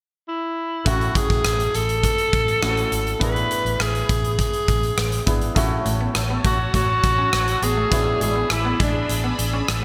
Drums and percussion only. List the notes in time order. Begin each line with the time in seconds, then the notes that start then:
0.86 kick, closed hi-hat
1.01 closed hi-hat
1.15 kick, closed hi-hat
1.30 kick, closed hi-hat
1.45 cross-stick, closed hi-hat
1.60 closed hi-hat
1.74 closed hi-hat
1.89 closed hi-hat
2.03 kick, closed hi-hat
2.18 closed hi-hat
2.33 kick, closed hi-hat
2.48 closed hi-hat
2.62 cross-stick, closed hi-hat
2.77 closed hi-hat
2.92 closed hi-hat
3.07 closed hi-hat
3.21 kick, closed hi-hat
3.36 closed hi-hat
3.51 closed hi-hat
3.66 closed hi-hat
3.80 cross-stick, closed hi-hat
3.95 closed hi-hat
4.09 kick, closed hi-hat
4.24 closed hi-hat
4.39 kick, closed hi-hat
4.53 closed hi-hat
4.68 kick, closed hi-hat
4.83 closed hi-hat
4.98 cross-stick, closed hi-hat
5.12 closed hi-hat
5.27 kick, closed hi-hat
5.41 closed hi-hat
5.56 kick, closed hi-hat
5.85 closed hi-hat
6.15 cross-stick, closed hi-hat
6.44 kick, closed hi-hat
6.74 kick, closed hi-hat
7.03 kick, closed hi-hat
7.33 cross-stick, closed hi-hat
7.48 closed hi-hat
7.62 closed hi-hat
7.92 kick, closed hi-hat
8.21 closed hi-hat
8.50 cross-stick, closed hi-hat
8.80 kick, closed hi-hat
9.09 closed hi-hat
9.39 closed hi-hat
9.68 cross-stick, closed hi-hat